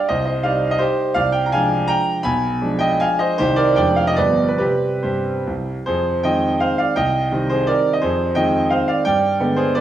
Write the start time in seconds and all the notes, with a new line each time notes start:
0.09 C2 C5 D#5
0.25 C5 D#5
0.43 G3 D#4 D5 F5
0.71 D#5
0.79 G4 C5
1.14 C2 D5 F5
1.32 G5
1.46 A#5
1.52 F3 G#3 D4 F5 G#5
1.88 G5 A#5
2.23 B1 G#5 B5
2.61 F3 G#3 D4
2.79 D#5 G5
3.00 F5 G#5
3.19 C5 D#5
3.38 C2 D#3 G3 D#4 G4 C5
3.56 A#4 D5
3.76 F1 F3 G#3 D4 D5 G5
3.96 F5
4.07 D#5
4.16 G1 F3 G3 B3 B4 D5
4.48 B4
4.58 C3 G3 C4 G4 B4
5.03 G2 G4 C5
5.47 C2
5.86 F2 G#4 C5
6.23 D#3 G#3 C4 D#5 G5
6.60 C5 F5
6.78 D5 F5
6.96 C2 D#5 G5
7.32 D#3 G3 C4
7.50 G#4 C5
7.67 A#4 D5
7.93 D#5
8.02 F2 G#4 C5
8.35 D#3 G#3 C4 D#5 G5
8.70 C5 F5
8.88 D5 F5
9.05 G2 D5 G5
9.39 D3 G#3 B3
9.56 G#4 C5
9.75 B4 D5